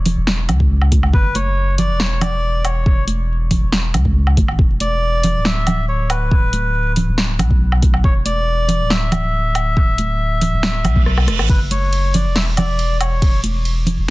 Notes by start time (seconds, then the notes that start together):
Already playing: E1
0.06 open hi-hat, low conga
0.17 E1
0.27 snare
0.49 C#2, closed hi-hat, low conga, low woodblock
0.60 kick, high conga
0.81 low woodblock
0.92 kick, closed hi-hat, high conga
1.03 low woodblock
1.13 F#1 B4, kick
1.35 C#5, closed hi-hat, high conga
1.78 D5, open hi-hat, low conga
1.89 E1
2.00 C#5, snare
2.21 D5, closed hi-hat, low conga, low woodblock
2.65 C#5, closed hi-hat, low woodblock
2.86 kick
3.07 closed hi-hat, high conga
3.51 kick, open hi-hat, low conga
3.62 E1
3.72 snare
3.94 C#2, closed hi-hat, low conga, low woodblock
4.05 kick, high conga
4.27 low woodblock
4.37 F#1, kick, closed hi-hat, high conga
4.48 A1, low woodblock
4.59 E1, kick
4.80 D5, closed hi-hat, high conga
5.23 open hi-hat, low conga
5.35 D1
5.45 E5, snare
5.67 closed hi-hat, low conga, low woodblock
5.89 C#5
6.10 B4, closed hi-hat, low woodblock
6.31 kick
6.53 closed hi-hat, high conga
6.96 open hi-hat, low conga
7.07 D1
7.18 snare
7.39 B1, closed hi-hat, low conga, low woodblock
7.51 kick, high conga
7.72 low woodblock
7.82 kick, closed hi-hat, high conga
7.94 low woodblock
8.04 E1 C#5, kick
8.25 D5, closed hi-hat, high conga
8.68 open hi-hat, low conga
8.80 D1
8.90 E5, snare
9.12 closed hi-hat, low conga, low woodblock
9.55 closed hi-hat, low woodblock
9.77 kick
9.98 closed hi-hat, high conga
10.41 open hi-hat, low conga
10.53 D1
10.63 snare, reverse cymbal
10.84 B1, closed hi-hat, low conga, low woodblock
10.96 kick, high conga
11.06 cross-stick
11.18 cross-stick, low woodblock
11.27 E1, cross-stick, closed hi-hat, high conga
11.39 A1, cross-stick, low woodblock
11.49 F#1 B4, kick, ride
11.71 C#5, closed hi-hat, high conga
11.93 ride
12.14 D5, open hi-hat, low conga
12.25 E1
12.36 E5, snare, ride
12.57 D5, closed hi-hat, low conga, low woodblock
12.79 ride
13.01 C#5, closed hi-hat, low woodblock
13.22 kick, ride
13.43 closed hi-hat, high conga
13.65 ride
13.86 open hi-hat, low conga
13.98 E1